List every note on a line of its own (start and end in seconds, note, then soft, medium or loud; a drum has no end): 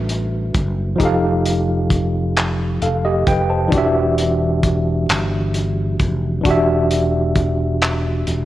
0.00 0.51 A1 loud
0.00 0.94 G3 medium
0.00 0.95 D4 medium
0.00 0.96 F#4 medium
0.00 0.97 A4 medium
0.00 0.98 B4 medium
0.00 1.01 C5 medium
0.00 0.98 E5 medium
0.00 1.01 A5 medium
0.09 closed hi-hat medium
0.54 0.96 F#1 medium
0.54 kick loud
0.54 closed hi-hat medium
0.96 3.66 F3 medium
0.96 3.68 D#4 medium
1.00 2.78 F1 medium
1.00 2.78 G4 medium
1.00 2.79 A4 medium
1.00 kick medium
1.00 closed hi-hat medium
1.05 2.81 F5 medium
1.46 closed hi-hat medium
1.91 kick medium
1.91 closed hi-hat medium
2.37 clap loud
2.37 closed hi-hat medium
2.82 3.23 F1 medium
2.82 3.04 A4 medium
2.82 3.04 F5 medium
2.82 closed hi-hat medium
3.05 3.26 G4 medium
3.05 3.26 D#5 medium
3.27 3.69 F1 medium
3.27 3.49 B4 medium
3.27 3.49 G5 medium
3.27 kick loud
3.27 closed hi-hat medium
3.50 3.93 C5 soft
3.50 3.93 A5 medium
3.69 6.39 E3 medium
3.69 6.40 D4 medium
3.69 kick medium
3.69 closed hi-hat medium
3.73 5.05 E1 loud
3.73 6.42 F#4 medium
3.73 6.43 G4 medium
3.78 6.44 E5 medium
4.18 closed hi-hat medium
4.63 kick medium
4.63 closed hi-hat medium
5.09 5.96 G1 medium
5.09 clap loud
5.09 closed hi-hat medium
5.54 closed hi-hat medium
5.99 6.41 F1 medium
5.99 kick loud
5.99 closed hi-hat soft
6.41 8.45 E3 medium
6.41 8.45 D4 medium
6.41 kick medium
6.41 closed hi-hat medium
6.45 8.23 E1 loud
6.45 8.45 F#4 medium
6.45 8.45 G4 medium
6.50 8.45 E5 medium
6.91 closed hi-hat medium
7.35 kick medium
7.35 closed hi-hat medium
7.82 clap loud
7.82 closed hi-hat medium
8.27 8.45 E1 medium
8.27 closed hi-hat medium